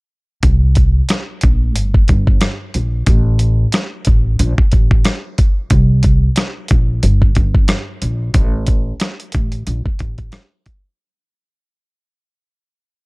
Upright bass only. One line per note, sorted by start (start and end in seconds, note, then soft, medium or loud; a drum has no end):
0.44 1.00 C2 loud
1.44 1.76 A#1 medium
1.76 2.04 G1 loud
2.09 2.37 G1 medium
2.75 3.03 A#1 medium
3.07 3.63 A1 loud
4.07 4.35 A1 medium
4.40 4.55 A#1 loud
4.58 muted upright bass stroke soft
4.73 5.01 A1 medium
5.71 6.27 C2 loud
6.71 6.99 A#1 medium
7.03 7.31 G1 loud
7.37 7.64 G1 medium
8.02 8.30 A#1 medium
8.35 8.91 A1 loud
9.35 9.62 A1 medium
9.67 9.83 A#1 loud
9.86 muted upright bass stroke soft
10.01 10.28 A1 medium